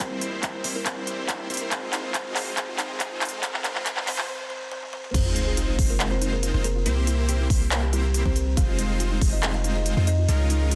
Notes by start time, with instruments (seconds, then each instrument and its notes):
Already playing: ambient pad C3, riser
0.00 808-style bass C2, ambient pad E3 G3 A#3 E4, supersaw synth G3 C4 E4 C5, kalimba C4 C5
0.11 synth arpeggio sound E4
0.21 synth arpeggio sound E4, closed hi-hat
0.33 synth arpeggio sound G4
0.43 synth arpeggio sound E4, kick, clap, closed hi-hat
0.54 synth arpeggio sound E4
0.64 808-style bass C2, supersaw synth G3 C4 E4 C5, synth arpeggio sound G4, open hi-hat
0.75 kalimba A#3 A#4, synth arpeggio sound E4
0.86 808-style bass C2, supersaw synth G3 C4 E4 C5, kalimba C4 C5, kick, clap, closed hi-hat
0.97 synth arpeggio sound E4
1.07 synth arpeggio sound E4, closed hi-hat
1.18 synth arpeggio sound G4
1.29 synth arpeggio sound E4, kick, clap, closed hi-hat
1.40 synth arpeggio sound E4
1.50 808-style bass C2, supersaw synth G3 C4 E4 C5, synth arpeggio sound G4, closed hi-hat
1.54 closed hi-hat
1.57 closed hi-hat
1.61 kalimba A#3 A#4, synth arpeggio sound E4
1.71 808-style bass F1, ambient pad C3 D#3 F3 G#3 D#4, supersaw synth G#3 C4 D#4 F4 C5, kalimba C4 C5, synth arpeggio sound G#4, kick, clap, closed hi-hat
1.83 synth arpeggio sound F4
1.93 synth arpeggio sound D#4, clap, closed hi-hat
2.04 synth arpeggio sound G#4
2.14 808-style bass F1, supersaw synth G#3 C4 D#4 F4 C5, kalimba C5, kick, clap, closed hi-hat
2.26 synth arpeggio sound F4
2.36 synth arpeggio sound D#4, clap, open hi-hat
2.47 synth arpeggio sound G#4
2.57 808-style bass F1, supersaw synth G#3 C4 D#4 F4 C5, kalimba C4 C5, kick, clap, closed hi-hat
2.68 synth arpeggio sound F4
2.79 synth arpeggio sound D#4, clap, closed hi-hat
2.90 synth arpeggio sound G#4
3.00 808-style bass F1, supersaw synth G#3 C4 D#4 F4 C5, kalimba C4 C5, synth arpeggio sound G#4, kick, clap, closed hi-hat
3.11 synth arpeggio sound F4
3.21 synth arpeggio sound D#4, clap, closed hi-hat
3.25 closed hi-hat
3.29 closed hi-hat
3.33 synth arpeggio sound G#4
3.43 808-style bass C#2, supersaw synth G#3 C4 D#4 F4 C5, kalimba C4 C5, synth arpeggio sound G#4, kick, clap, closed hi-hat
3.54 synth arpeggio sound F4, clap
3.64 808-style bass C#2, supersaw synth G#3 C4 D#4 F4 C5, kalimba C4 C5, synth arpeggio sound G#4, clap, closed hi-hat
3.75 synth arpeggio sound F4, clap
3.86 808-style bass C#2, supersaw synth G#3 C4 D#4 F4 C5, kalimba C4, synth arpeggio sound G#4, kick, clap, closed hi-hat
3.97 synth arpeggio sound F4, clap
4.07 808-style bass C#2, supersaw synth G#3 C4 D#4 F4 C5, kalimba C4 C5, synth arpeggio sound G#4, clap, open hi-hat
4.18 synth arpeggio sound F4, clap
4.29 kalimba C4 C5
4.50 kalimba C4 C5
4.72 kalimba C4 C5, high tom
4.83 high tom
4.93 kalimba C4 C5, mid tom
5.04 mid tom
5.14 808-style bass F1, supersaw synth G#3 C4 D#4 F4 C5, kalimba C4 C5, synth arpeggio sound G#4, kick, closed hi-hat, crash, sub drop
5.26 synth arpeggio sound F4
5.36 synth arpeggio sound D#4, closed hi-hat
5.47 synth arpeggio sound G#4
5.57 synth arpeggio sound F4, closed hi-hat
5.68 synth arpeggio sound D#4
5.79 808-style bass F1, supersaw synth G#3 C4 D#4 F4 C5, synth arpeggio sound G#4, kick, open hi-hat
5.90 kalimba A#3 A#4, synth arpeggio sound F4
6.00 synth arpeggio sound G#4, clap, closed hi-hat
6.11 kalimba C4 C5, synth arpeggio sound F4
6.22 synth arpeggio sound D#4, closed hi-hat
6.33 kalimba A#3 A#4, synth arpeggio sound G#4
6.43 synth arpeggio sound F4, closed hi-hat
6.54 808-style bass F1, supersaw synth G#3 C4 D#4 F4 C5, synth arpeggio sound D#4
6.64 kalimba A#3 A#4, synth arpeggio sound G#4, closed hi-hat
6.76 synth arpeggio sound F4
6.86 808-style bass C2, supersaw synth A#3 C4 E4 G4 C5, synth arpeggio sound A#4, closed hi-hat
6.97 synth arpeggio sound G4
7.07 synth arpeggio sound E4, closed hi-hat
7.18 synth arpeggio sound A#4
7.29 synth arpeggio sound G4, closed hi-hat
7.40 synth arpeggio sound E4
7.50 808-style bass C2, supersaw synth A#3 C4 E4 G4 C5, synth arpeggio sound A#4, kick, open hi-hat
7.61 synth arpeggio sound G4
7.71 synth arpeggio sound A#4, clap, closed hi-hat
7.83 synth arpeggio sound G4
7.93 kalimba G3 G4, synth arpeggio sound E4, closed hi-hat
8.04 synth arpeggio sound A#4
8.14 synth arpeggio sound G4, closed hi-hat
8.26 808-style bass C2, supersaw synth A#3 C4 E4 G4 C5, kalimba C4 C5, synth arpeggio sound E4, kick
8.36 synth arpeggio sound A#4, closed hi-hat
8.47 synth arpeggio sound G4
8.57 808-style bass F1, supersaw synth G#3 C4 D#4 F4 C5, kalimba F4 F5, synth arpeggio sound G#4, kick, closed hi-hat
8.68 synth arpeggio sound F4
8.79 synth arpeggio sound D#4, closed hi-hat
8.90 synth arpeggio sound G#4
9.00 synth arpeggio sound F4, closed hi-hat
9.11 synth arpeggio sound D#4
9.21 808-style bass F1, supersaw synth G#3 C4 D#4 F4 C5, synth arpeggio sound G#4, kick, open hi-hat
9.33 kalimba D#4 D#5, synth arpeggio sound F4
9.43 synth arpeggio sound G#4, clap, closed hi-hat
9.54 synth arpeggio sound F4, kalimba F4 F5
9.64 synth arpeggio sound D#4, closed hi-hat
9.76 kalimba D#4 D#5, synth arpeggio sound G#4
9.86 synth arpeggio sound F4, closed hi-hat
9.97 808-style bass F2, supersaw synth G#3 C4 D#4 F4 C5, synth arpeggio sound D#4
10.07 kalimba D#4 D#5, synth arpeggio sound G#4, closed hi-hat
10.18 synth arpeggio sound F4
10.28 808-style bass C#2, supersaw synth G#3 C#4 D#4 F4 A#4, synth arpeggio sound G#4, closed hi-hat
10.40 synth arpeggio sound F4
10.50 synth arpeggio sound D#4, closed hi-hat
10.61 synth arpeggio sound G#4
10.71 synth arpeggio sound F4, closed hi-hat